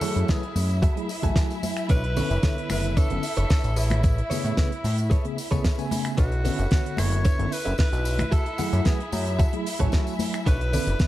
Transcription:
Already playing: E4 A4 E5, downlifter
0.01 F#3 A3 E4 F#4 G#4 A4 C#5, open hi-hat, tambourine, low conga
0.16 F#2, closed hi-hat, tambourine
0.28 F#3 A3 E4 G#4 B4, kick, snare, closed hi-hat, tambourine
0.43 closed hi-hat
0.56 F#2, open hi-hat, tambourine, high conga
0.69 closed hi-hat, tambourine
0.82 F#4 G#4 A4 E5, kick, closed hi-hat, tambourine
0.96 F#3 A3 E4 G#4, closed hi-hat
1.09 muted clean electric guitar stroke, open hi-hat, tambourine
1.22 A1 F#3 A3 E4 F#4 G#4 A4 E5 G#5, kick, closed hi-hat, tambourine
1.36 kick, snare, closed hi-hat, tambourine
1.50 closed hi-hat, tambourine
1.63 open hi-hat, tambourine, high conga
1.77 finger snap, closed hi-hat, tambourine
1.89 B1 D4 A4 B4 C#5, kick, closed hi-hat, tambourine
2.04 closed hi-hat
2.16 D3 B3 C#4 D4 A4 B4 C#5, open hi-hat, tambourine, low conga
2.31 F#1, closed hi-hat, tambourine
2.42 D3 B3 A4 C#5, kick, snare, closed hi-hat, tambourine
2.58 closed hi-hat
2.70 F#1 B4, finger snap, open hi-hat, tambourine, high conga
2.84 closed hi-hat, tambourine
2.97 F#1 D4 A4 B4 C#5, kick, closed hi-hat, tambourine
3.10 F#1 D3 B3 C#4 A4, closed hi-hat
3.23 muted clean electric guitar stroke, open hi-hat, tambourine
3.37 F#1 D4 A4 B4 C#5, closed hi-hat, tambourine
3.50 kick, snare, open hi-hat, tambourine
3.64 A1, closed hi-hat, tambourine
3.76 E4 G#4 A4 B4 C#5, open hi-hat, tambourine
3.90 finger snap, closed hi-hat, tambourine, high conga, low conga
4.03 kick, closed hi-hat, tambourine
4.18 closed hi-hat
4.30 C#3 A3 B3 G#4 A4 B4 C#5, open hi-hat, tambourine, low conga
4.44 A2, closed hi-hat, tambourine
4.57 C#3 A3 B3 B4, kick, snare, closed hi-hat, tambourine
4.72 closed hi-hat
4.84 A2, open hi-hat, tambourine, high conga
4.98 closed hi-hat, tambourine
5.10 G#4 A4 B4 C#5, kick, closed hi-hat, tambourine
5.24 C#3 A3 B3 G#4, closed hi-hat
5.37 muted clean electric guitar stroke, open hi-hat, tambourine
5.51 C#2 C#3 A3 B3 G#4 A4 B4 C#5, kick, closed hi-hat, tambourine
5.64 kick, snare, closed hi-hat, tambourine
5.78 C#3 A3 B3 G#5, closed hi-hat, tambourine
5.91 open hi-hat, tambourine, high conga
6.05 finger snap, closed hi-hat, tambourine
6.17 B1 D4 E4 F#4 A4 B4 C#5 E5, kick, closed hi-hat, tambourine
6.32 closed hi-hat
6.44 D3 B3 C#4 D4 A4 B4 C#5, open hi-hat, tambourine, low conga
6.59 F#1, closed hi-hat, tambourine
6.71 D3 B3 A4 C#5, kick, snare, closed hi-hat, tambourine
6.86 closed hi-hat
6.97 F#1 C#5, finger snap, open hi-hat, tambourine, high conga
7.12 closed hi-hat, tambourine
7.25 F#1 D4 A4 B4 C#5, kick, closed hi-hat, tambourine
7.39 F#1 D3 B3 C#4 A4, closed hi-hat
7.52 B4, muted clean electric guitar stroke, open hi-hat, tambourine
7.65 F#1 D4 A4 B4 E5, closed hi-hat, tambourine
7.78 B4, kick, snare, open hi-hat, tambourine
7.92 B1, closed hi-hat, tambourine
8.05 open hi-hat, tambourine
8.18 finger snap, closed hi-hat, tambourine, high conga, low conga
8.31 F#4 G#4 A4 E5, kick, closed hi-hat, tambourine
8.46 closed hi-hat
8.58 F#3 A3 E4 F#4 G#4 A4 F#5, open hi-hat, tambourine, low conga
8.73 F#2, closed hi-hat, tambourine
8.85 F#3 A3 E4 G#4 B4, kick, snare, closed hi-hat, tambourine
9.00 closed hi-hat
9.12 F#2, open hi-hat, tambourine, high conga
9.26 closed hi-hat, tambourine
9.39 F#4 G#4 A4 E5, kick, closed hi-hat, tambourine
9.53 F#3 A3 E4 G#4, closed hi-hat
9.66 muted clean electric guitar stroke, open hi-hat, tambourine
9.79 A1 F#3 A3 E4 F#4 G#4 A4 C#5 G#5, kick, closed hi-hat, tambourine
9.92 kick, snare, closed hi-hat, tambourine
10.07 closed hi-hat, tambourine
10.19 open hi-hat, tambourine, high conga
10.34 finger snap, closed hi-hat, tambourine
10.46 B1 D4 A4 B4 C#5, kick, closed hi-hat, tambourine
10.61 closed hi-hat
10.73 D3 B3 C#4 D4 A4 B4 D5, open hi-hat, tambourine, low conga
10.87 F#1, closed hi-hat, tambourine
10.99 D3 B3 A4, kick, snare, closed hi-hat, tambourine

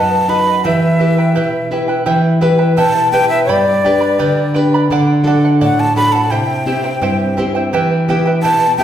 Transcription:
Already playing: F#2 D#4 F#4 B4 D#5 F#5 A5
0.28 D#4 F#4 B4 D#5 F#5 B5
0.46 D#5 F#5
0.65 E3 E4 G4 B4 E5 G5
0.99 E4 G4 B4 E5 G5
1.18 E4 B4 G5
1.35 B2 E4 G4 B4 E5 G5
1.71 E4 G4 B4 E5 G5
1.88 E4 B4 G5
2.06 E3 E4 G4 B4 E5 G5
2.41 E4 G4 B4 E5 G5
2.58 E4 B4 G5
2.77 B2 E4 G4 B4 E5 G5 A5
3.12 E4 G4 B4 E5 G5
3.29 E4 B4 E5 G5
3.45 G4 B4 D5 G5
3.49 G2 D5 B5
3.84 D4 G4 B4 D5 G5 B5
4.01 B4 D5 B5
4.19 D3 G4 B4 D5 G5 B5
4.54 D4 G4 B4 D5 G5 B5
4.74 B4 D5 B5
4.91 D3 A4 D5 F#5
5.24 D4 F#4 A4 D5 F#5
5.45 D5 F#5
5.61 A2 A4 D5 F#5
5.80 A5
5.96 D4 F#4 A4 D5 F#5 B5
6.12 D5 F#5 A5
6.31 C3 E4 G4 C5 E5 G5
6.66 C4 E4 G4 C5 E5 G5
6.84 E4 C5 G5
7.02 G2 E4 G4 C5 E5 G5
7.37 C4 E4 G4 C5 E5 G5
7.55 E4 C5 G5
7.73 E3 E4 G4 B4 E5 G5
8.08 B3 E4 G4 B4 E5 G5
8.26 E4 B4 G5
8.43 B2 E4 G4 B4 E5 G5 A5
8.78 B3 E4 G4 E5 G5

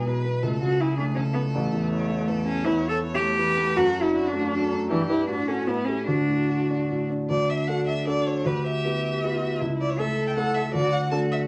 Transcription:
Already playing: B1 B2 G#3 B3 E4
0.06 B2 B4
0.24 B3
0.42 C#2 A3 A4
0.62 C#3 F#4
0.80 E4 G#4
0.97 A3 D4
1.15 C#3 C#4 A4
1.33 A3 B3
1.53 A1 A3
1.73 E2
1.91 E4 C#5
2.09 A3
2.27 E2 A4
2.46 A3 C#4
2.64 E2 E4 C#5
2.83 E3
2.89 A4
3.03 E4 C#5
3.14 G4
3.20 A3
3.39 E3 B4
3.57 A3
3.76 F#2 F#4 A4
3.94 F#3
4.02 E4
4.13 D4 F#4
4.27 D4
4.33 A3
4.51 F#3 A4
4.72 A3
4.89 G2 E3 G4
5.09 E4 G4 B4
5.28 A2 D4 F#4
5.47 C#4 F#4 A4
5.67 A2 B3 E4
5.85 C#4 G4 A4
6.06 D2 D4 F#4
6.28 A2
6.49 F#4
6.70 D4
6.90 A2
7.10 D4
7.30 D2 D4 D5
7.50 E5
7.68 D4 F#4 A4 F#5
7.87 E5
8.06 D4 F#4 A4 D5
8.26 C#5
8.45 D2 G4 B4
8.66 E5
8.84 B3 E4 G4
9.24 B3 E4 F#4 G4
9.61 C#2 E4
9.81 D5
9.90 C#5
9.98 A3 E4 A4 E5
10.27 G5
10.36 A3 E4 A4 F#5
10.54 E5
10.73 D2 F#4 D5
10.93 F#5
11.10 A3 D4 F#4 A4 A5
11.32 E5

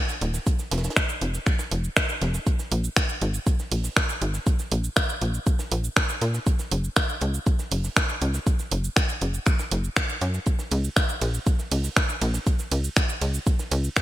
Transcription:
0.09 snare, shaker
0.21 D#1, closed hi-hat, open hi-hat
0.34 snare, shaker
0.46 kick, closed hi-hat, shaker
0.59 snare, shaker
0.71 F1, snare, closed hi-hat, open hi-hat
0.78 snare, closed hi-hat
0.84 snare, closed hi-hat, shaker
0.90 snare, closed hi-hat
0.96 finger snap, kick, snare, closed hi-hat, shaker
1.09 shaker
1.21 F1, closed hi-hat, open hi-hat
1.34 snare, shaker
1.46 finger snap, kick, closed hi-hat, shaker
1.59 snare, shaker
1.71 F1, closed hi-hat, open hi-hat
1.84 shaker
1.97 finger snap, kick, snare, closed hi-hat, shaker
2.09 snare, shaker
2.22 F1, snare, closed hi-hat, open hi-hat
2.34 snare, shaker
2.47 kick, closed hi-hat, shaker
2.59 snare, shaker
2.72 A#1, closed hi-hat, open hi-hat
2.84 shaker
2.97 finger snap, kick, snare, closed hi-hat, shaker
3.09 shaker
3.21 G#1, closed hi-hat, open hi-hat
3.34 shaker
3.47 kick, closed hi-hat, shaker
3.59 snare, shaker
3.72 A#1, open hi-hat
3.84 snare, shaker
3.97 finger snap, kick, snare, shaker
4.09 snare, shaker
4.22 G#1, closed hi-hat, open hi-hat
4.34 snare, shaker
4.47 kick, closed hi-hat, shaker
4.59 snare, shaker
4.72 A#1, closed hi-hat, open hi-hat
4.84 shaker
4.96 finger snap, kick, snare, closed hi-hat, shaker
5.09 shaker
5.22 A#1, closed hi-hat, open hi-hat
5.34 shaker
5.47 kick, closed hi-hat, shaker
5.59 snare, shaker
5.72 A#1, closed hi-hat, open hi-hat
5.84 shaker
5.96 finger snap, kick, snare, closed hi-hat, shaker
6.09 snare, shaker
6.21 A#2, snare, closed hi-hat, open hi-hat
6.34 snare, shaker
6.46 kick, closed hi-hat, shaker
6.59 snare, shaker
6.71 F#1, closed hi-hat, open hi-hat
6.84 shaker
6.96 finger snap, kick, snare, closed hi-hat, shaker
7.09 shaker
7.21 C#2, closed hi-hat, open hi-hat
7.34 shaker
7.46 kick, closed hi-hat, shaker
7.59 snare, shaker
7.71 F#1, open hi-hat
7.84 snare, shaker
7.97 finger snap, kick, snare, closed hi-hat, shaker
8.08 snare, shaker
8.22 C#2, closed hi-hat, open hi-hat
8.34 snare, shaker
8.47 kick, closed hi-hat, shaker
8.59 snare, shaker
8.71 F#1, closed hi-hat, open hi-hat
8.84 shaker
8.96 finger snap, kick, snare, closed hi-hat, shaker
9.09 shaker
9.21 F#1, closed hi-hat, open hi-hat
9.34 shaker
9.46 finger snap, kick, closed hi-hat, shaker
9.59 snare, shaker
9.71 F#1, closed hi-hat, open hi-hat
9.84 shaker
9.97 finger snap, kick, snare, closed hi-hat, shaker
10.09 snare, shaker
10.21 F#2, snare, closed hi-hat, open hi-hat
10.34 snare, shaker
10.46 kick, closed hi-hat, shaker
10.59 snare, shaker
10.71 C#2, closed hi-hat, open hi-hat, ride
10.84 shaker
10.96 finger snap, kick, snare, closed hi-hat, shaker
11.09 shaker
11.21 A#1, closed hi-hat, open hi-hat, ride
11.34 shaker
11.46 kick, closed hi-hat, shaker
11.59 snare, shaker
11.71 C#2, open hi-hat, ride
11.84 snare, shaker
11.97 finger snap, kick, snare, shaker
12.09 snare, shaker
12.22 A#1, closed hi-hat, open hi-hat, ride
12.34 snare, shaker
12.46 kick, closed hi-hat, shaker
12.59 snare, shaker
12.71 C#2, closed hi-hat, open hi-hat, ride
12.84 shaker
12.96 finger snap, kick, snare, closed hi-hat, shaker
13.09 shaker
13.21 C#2, closed hi-hat, open hi-hat, ride
13.34 shaker
13.46 kick, closed hi-hat, shaker
13.59 snare, shaker
13.71 C#2, closed hi-hat, open hi-hat, ride
13.84 shaker
13.96 finger snap, kick, snare, closed hi-hat, shaker

